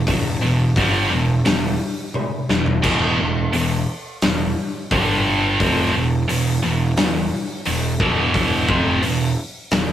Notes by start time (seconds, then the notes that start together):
0.07 E1 E2 B2, kick, open hi-hat
0.41 E1 E2 B2
0.76 G1 G2 D3 G3, kick, open hi-hat
1.10 E1 E2 B2
1.45 E1 E2 B2, snare, open hi-hat
2.14 high tom
2.49 E1 E2 B2, snare
2.66 floor tom
2.82 E1 E2 B2 E3, kick, crash, splash
3.18 E1 E2 B2
3.53 E1 E2 B2, open hi-hat
4.22 E1 E2 B2, snare, open hi-hat
4.91 G1 G2 D3 G3, kick, open hi-hat
5.60 F1 F2 C3 F3, kick, open hi-hat
5.94 E1 E2 B2
6.29 E1 E2 B2, open hi-hat
6.63 E1 E2 B2
6.97 E1 E2 B2, snare, open hi-hat
7.65 E1 E2 B2, open hi-hat
8.00 E1 E2 B2 E3, kick
8.34 kick, open hi-hat
8.68 F1 F2 C3 F3, kick
9.03 E1 E2 B2, open hi-hat
9.71 E1 E2 B2, snare, open hi-hat